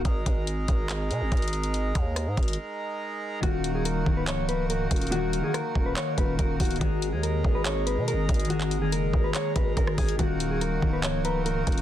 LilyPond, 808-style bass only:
\new Staff \with { instrumentName = "808-style bass" } { \clef bass \time 4/4 \key ees \minor \tempo 4 = 142 aes,,8 aes,,4 aes,,4 ces16 aes,,16 aes,,4~ | aes,,8 ees,8. aes,16 aes,,8 r2 | ees,,4. des,,2 ees,,8~ | ees,,8. r8. ees,,8 r8 ees,,8 ees,,8 des,,8 |
aes,,8. ees,8. aes,,4~ aes,,16 ces16. aes,,16. aes,,8~ | aes,,4 ges,,8 aes,,8 r8 aes,,8 aes,,8 aes,,8 | ees,,4. des,,2 ees,,8 | }